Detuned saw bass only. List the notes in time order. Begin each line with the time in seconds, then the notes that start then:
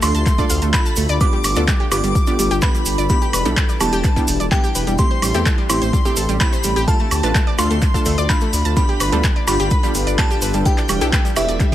0.03 D2
0.15 D2
0.50 D2
0.62 D2
0.97 D2
1.09 D2
1.44 G1
1.56 D2
1.92 G1
2.04 G1
2.39 G1
2.51 G1
2.86 G1
2.98 G1
3.33 E1
3.45 B1
3.81 E1
3.93 E1
4.28 E1
4.40 E1
4.75 E1
4.87 E1
5.22 A1
5.35 E2
5.70 A1
5.82 A1
6.17 A1
6.29 A1
6.64 A1
6.76 A1
7.11 D2
7.23 A1
7.58 D2
7.71 D2
8.06 D2
8.18 D2
8.53 D2
8.65 D2
9.00 G1
9.13 D2
9.48 G1
9.60 G1
9.95 G1
10.07 G1
10.42 G1
10.54 G1
10.89 E1
11.01 B1
11.36 E1
11.49 E1